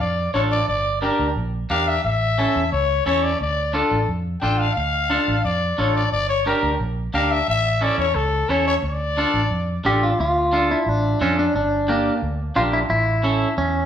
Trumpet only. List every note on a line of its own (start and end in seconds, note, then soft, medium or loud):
0.00 0.32 D5 medium
0.34 0.42 C#5 medium
0.51 0.67 D5 medium
0.69 1.00 D5 medium
1.02 1.34 A#4 medium
1.70 1.89 F5 loud
1.88 2.04 E5 medium
2.04 2.68 E5 medium
2.72 3.04 C#5 medium
3.06 3.25 C#5 medium
3.23 3.40 D5 medium
3.41 3.76 D5 medium
3.75 4.09 A4 medium
4.42 4.60 G5 medium
4.58 4.75 F5 medium
4.75 5.40 F5 medium
5.44 5.80 D5 medium
5.79 5.95 C#5 medium
5.95 6.11 D5 medium
6.12 6.28 D5 medium
6.29 6.45 C#5 medium
6.47 6.78 A#4 medium
7.14 7.33 F5 medium
7.31 7.48 E5 loud
7.49 7.85 E5 loud
7.83 7.98 D5 medium
7.99 8.17 C#5 medium
8.15 8.52 A4 medium
8.50 8.67 C#5 medium
8.67 8.75 C#5 medium
8.85 9.82 D5 medium